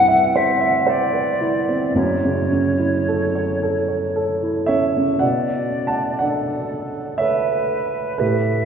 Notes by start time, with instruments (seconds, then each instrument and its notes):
Already playing: grand piano C2 G2 C4 E4 B4, flute F#5
0.08 grand piano E5
0.36 grand piano C5, flute E5
0.61 grand piano E5
0.87 grand piano C5, flute D5
1.13 grand piano B4
1.41 grand piano E4
1.69 grand piano C4
1.95 grand piano F#1 F#2, flute C#5
2.25 grand piano C#3
2.52 grand piano C#4
2.79 grand piano E4
3.08 grand piano A4
3.35 grand piano C#5
3.63 grand piano A4
3.89 grand piano C#5
4.16 grand piano A4
4.43 grand piano E4
4.66 grand piano C#4 C#5 E5
4.97 grand piano C#3
5.19 grand piano B2 D5 F#5, flute D5
5.87 grand piano F#5 A5
6.19 grand piano D4 D5 F#5, flute A4
7.18 grand piano A4 C#5 E5, flute B4
8.18 grand piano A2 G4 B4, flute E5